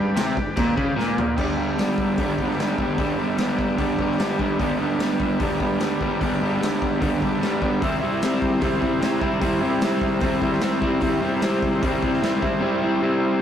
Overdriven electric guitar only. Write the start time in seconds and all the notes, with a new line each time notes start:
Already playing: G2
0.16 C3
0.37 G2
0.57 A#2
0.77 C#3
0.96 A#2
1.36 G2 D3 G3 B3 D4
1.57 G3 B3 D4
1.78 D3 G3 B3 D4
2.19 G2 D3 G3 B3 D4
2.40 G3 B3 D4
2.57 D3 G3 B3 D4
2.78 G3 B3 D4
2.98 G2 D3 G3 B3 D4
3.18 G3 B3 D4
3.38 D3 G3 B3 D4
3.78 G2 D3 G3 B3 D4
3.99 G3 B3 D4
4.18 D3 G3 B3 D4
4.38 G3 B3 D4
4.59 G2 D3 G3 B3 D4
4.79 G3 B3 D4
5.00 D3 G3 B3 D4
5.40 G2 D3 G3 B3 D4
5.60 G3 B3 D4
5.79 D3 G3 B3 D4
6.00 G3 B3 D4
6.20 G2 D3 G3 B3 D4
6.40 G3 B3 D4
6.59 D3 G3 B3 D4
7.01 G2 D3 G3 B3 D4
7.21 G3 B3 D4
7.41 D3 G3 B3 D4
7.62 G3 B3 D4
7.82 C3 G3 C4 E4
8.01 G3 C4 E4
8.22 C3 G3 C4 E4
8.61 C3 G3 C4 E4
8.81 G3 C4 E4
9.01 C3 G3 C4 E4
9.21 G3 C4 E4
9.41 C3 G3 C4 E4
9.61 G3 C4 E4
9.82 C3 G3 C4 E4
10.22 C3 G3 C4 E4
10.41 G3 C4 E4
10.62 C3 G3 C4 E4
10.81 G3 C4 E4
11.01 C3 G3 C4 E4
11.21 G3 C4 E4
11.41 C3 G3 C4 E4
11.81 C3 G3 C4 E4
12.02 G3 C4 E4
12.21 C3 G3 C4 E4
12.40 G3 C4 E4
12.60 C3 G3 C4 E4
12.81 G3 C4 E4
13.01 C3 G3 C4 E4